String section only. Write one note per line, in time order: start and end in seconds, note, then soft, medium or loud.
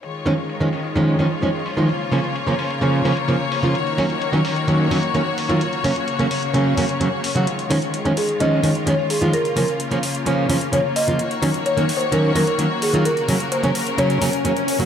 0.03 1.87 D#3 medium
0.03 1.87 G#3 medium
0.03 3.72 F4 medium
0.03 11.15 C#5 medium
1.89 3.73 C#3 medium
1.89 7.43 A#3 medium
3.75 5.59 D#3 medium
3.75 7.43 F#4 medium
5.61 7.45 C#3 medium
7.47 9.32 D#3 medium
7.47 9.32 G#3 medium
7.47 11.16 F4 medium
9.33 11.17 C#3 medium
9.33 14.85 A#3 medium
11.19 13.03 D#3 medium
11.19 14.85 F#4 medium
11.19 13.03 C#5 medium
13.05 14.85 C#3 medium
13.05 14.85 A#4 medium